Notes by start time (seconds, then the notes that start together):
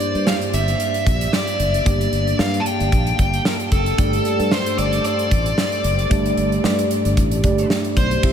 Already playing: G2 A#3 D4 G4 D5
0.00 closed hi-hat
0.15 G2, closed hi-hat
0.27 F5, snare
0.41 closed hi-hat
0.53 G1 E5, closed hi-hat
0.68 closed hi-hat
0.80 closed hi-hat
0.94 closed hi-hat
1.07 A#1, kick, closed hi-hat
1.21 closed hi-hat
1.33 D5, snare
1.47 closed hi-hat
1.60 F#1, closed hi-hat
1.74 closed hi-hat
1.85 G1 G2 A#3 D4 G4 D5, kick, closed hi-hat
2.01 closed hi-hat
2.13 G1, closed hi-hat
2.27 closed hi-hat
2.39 G2 F5, snare
2.54 closed hi-hat
2.60 A5
2.66 G5, closed hi-hat
2.80 G1, closed hi-hat
2.92 A#1, kick, closed hi-hat
3.07 closed hi-hat
3.19 G1, kick, closed hi-hat
3.34 closed hi-hat
3.45 A#4, snare
3.60 closed hi-hat
3.72 F#1 A4, kick, closed hi-hat
3.86 closed hi-hat
3.97 G1 G2 A3 D4 G4 D5, kick, closed hi-hat
4.13 closed hi-hat
4.25 closed hi-hat
4.39 G2, closed hi-hat
4.51 C5, snare
4.66 closed hi-hat
4.78 G1 D5, closed hi-hat
4.93 closed hi-hat
5.04 D5, closed hi-hat
5.19 closed hi-hat
5.31 A1, kick, closed hi-hat
5.46 closed hi-hat
5.58 snare
5.72 closed hi-hat
5.84 F#1, closed hi-hat
5.99 closed hi-hat
6.10 G1 G2 A3 D4 G4 D5, kick, closed hi-hat
6.26 closed hi-hat
6.38 G1, closed hi-hat
6.52 closed hi-hat
6.64 G2, snare
6.79 closed hi-hat
6.91 closed hi-hat
7.05 G1, closed hi-hat
7.17 A1, kick, closed hi-hat
7.31 closed hi-hat
7.43 G1 A3 D4 G4 D5, kick, closed hi-hat
7.58 closed hi-hat
7.70 snare
7.84 closed hi-hat
7.97 B1 C5, kick, closed hi-hat
8.11 closed hi-hat
8.23 C2 C3 C4 E4 G4 E5, kick, crash